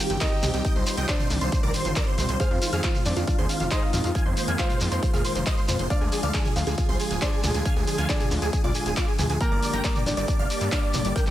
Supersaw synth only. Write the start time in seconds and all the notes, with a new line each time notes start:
0.10 G4
0.21 G4 A#4
0.32 G4
0.43 G4
0.54 G4
0.65 D#5 G5
0.76 C5
0.87 C5
0.97 D#5 G5
1.08 C5
1.19 C5
1.41 C5
1.52 C5
1.63 A#4 D5
1.74 C5
1.85 C5
1.96 A#4 D5
2.07 C5
2.18 C5
2.29 C5
2.40 G#4 F5
2.51 F4
2.62 F4
2.73 G#4 F5
2.84 F4
2.95 F4
3.17 F4
3.27 F4
3.38 G#4 C5
3.49 F4
3.60 F4
3.71 G#4 C5
3.82 F4
3.93 F4
4.04 F4
4.15 F5 G#5
4.26 C5
4.37 C5
4.48 F5 G#5
4.59 C5
4.70 C5
4.91 C5
5.02 C5
5.13 G#4 F5
5.24 C5
5.35 C5
5.46 C5 D#5
5.57 C5
5.68 C5
5.79 C5
5.90 D5 F5
6.01 G#4
6.12 G#4
6.23 D5 F5
6.34 G#4
6.45 G#4
6.67 G#4
6.78 G#4
6.89 G#4 C5
7.00 G#4
7.11 G#4
7.21 G#4 C5
7.32 G#4
7.43 G#4
7.54 G#4
7.65 F5 G#5
7.76 G#4
7.87 G#4
7.98 F5 G#5
8.09 G#4
8.20 G#4
8.42 G#4
8.53 G#4
8.64 F4 D5
8.75 G#4
8.86 G#4
8.97 F4 D5
9.08 G#4
9.19 G#4
9.30 G#4
9.41 G5 A#5
9.52 D5
9.63 D5
9.74 G5 A#5
9.84 D5
9.95 D5
10.17 D5
10.28 D5
10.39 D5 F5
10.50 D5
10.61 D5
10.72 D5 F5
10.83 D5
10.94 D5
11.05 D5
11.16 A#4 G5
11.27 G4